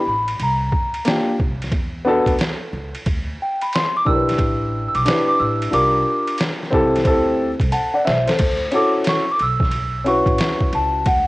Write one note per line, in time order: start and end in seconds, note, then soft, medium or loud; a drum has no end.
0.07 0.34 A1 medium
0.07 0.42 B5 medium
0.28 ride medium
0.40 0.67 C2 medium
0.40 1.04 A#5 medium
0.40 ride medium
0.72 kick medium
0.94 ride medium
1.05 1.32 A#3 medium
1.05 1.33 D4 medium
1.05 1.33 F4 medium
1.05 1.34 G4 medium
1.05 snare loud
1.05 hi-hat pedal soft
1.05 ride medium
1.40 1.68 C2 medium
1.40 kick medium
1.62 snare soft
1.62 ride medium
1.71 2.18 E2 medium
1.71 kick medium
1.71 ride medium
2.05 2.32 B3 medium
2.05 2.32 D4 medium
2.05 2.33 F#4 medium
2.05 2.34 A4 loud
2.26 2.36 D2 loud
2.26 kick medium
2.26 ride medium
2.39 snare loud
2.39 hi-hat pedal soft
2.39 ride medium
2.73 2.91 C#2 medium
2.95 ride medium
3.06 3.34 D2 medium
3.06 kick medium
3.06 ride medium
3.42 3.61 G5 medium
3.61 3.67 B5 medium
3.61 ride medium
3.73 3.96 C6 loud
3.73 snare loud
3.73 hi-hat pedal medium
3.73 ride medium
3.97 4.07 D6 loud
4.05 4.34 B1 medium
4.05 5.01 D4 medium
4.05 5.02 E4 medium
4.05 5.02 G4 medium
4.05 4.16 A#4 medium
4.05 4.87 E6 loud
4.05 kick medium
4.15 5.06 B4 medium
4.29 snare soft
4.29 ride medium
4.38 4.85 A1 medium
4.38 kick medium
4.38 ride medium
4.88 4.96 E6 medium
4.95 5.04 B1 medium
4.95 5.27 D6 medium
4.95 ride medium
5.05 5.69 D4 medium
5.05 5.73 E4 medium
5.05 5.71 G4 soft
5.05 5.74 B4 medium
5.05 snare loud
5.05 hi-hat pedal soft
5.05 ride medium
5.28 5.40 D6 medium
5.39 5.68 A1 medium
5.39 5.74 E6 medium
5.62 ride medium
5.71 6.01 C2 medium
5.71 6.67 D4 medium
5.71 6.68 F4 soft
5.71 6.68 G4 soft
5.71 6.69 A#4 medium
5.71 6.36 D6 medium
5.71 ride medium
6.27 ride medium
6.38 snare loud
6.38 hi-hat pedal medium
6.38 ride medium
6.63 snare soft
6.71 7.01 C2 medium
6.71 6.98 C4 medium
6.71 6.99 E4 medium
6.71 7.00 G4 medium
6.71 7.00 A4 medium
6.71 kick medium
6.96 snare soft
6.96 ride medium
7.04 7.52 D2 medium
7.04 7.47 C4 medium
7.04 7.48 E4 medium
7.04 7.48 G4 medium
7.04 7.49 A4 medium
7.04 kick medium
7.04 ride medium
7.60 7.70 C2 medium
7.60 kick medium
7.60 ride medium
7.72 7.92 F#5 soft
7.72 7.93 A5 medium
7.72 hi-hat pedal soft
7.72 ride medium
7.94 8.05 D5 medium
7.94 8.05 F#5 medium
8.05 8.25 B1 medium
8.05 8.26 C5 medium
8.05 8.26 E5 medium
8.05 snare medium
8.27 8.60 A4 medium
8.27 8.59 C5 medium
8.27 snare medium
8.27 ride medium
8.39 8.67 D2 loud
8.39 kick loud
8.39 crash medium
8.39 ride medium
8.71 9.23 C#4 medium
8.71 9.24 E4 medium
8.71 9.24 F#4 medium
8.71 9.25 A4 medium
8.71 ride medium
8.75 8.90 D6 medium
9.04 snare medium
9.04 hi-hat pedal soft
9.04 ride medium
9.09 9.28 C#6 medium
9.31 9.41 D6 medium
9.39 10.25 B1 medium
9.39 10.10 E6 loud
9.39 ride soft
9.60 kick loud
9.60 snare soft
9.71 ride medium
10.04 11.01 C#4 medium
10.04 11.01 E4 medium
10.04 11.02 F#4 medium
10.04 11.03 B4 medium
10.04 10.76 C#6 medium
10.04 ride soft
10.26 10.36 A1 medium
10.26 kick medium
10.26 ride soft
10.38 snare loud
10.38 hi-hat pedal soft
10.38 ride medium
10.61 kick medium
10.73 11.01 C#2 medium
10.73 11.08 A5 medium
10.73 ride medium
11.06 11.27 D2 loud
11.06 11.27 F#5 loud
11.06 kick loud
11.06 ride medium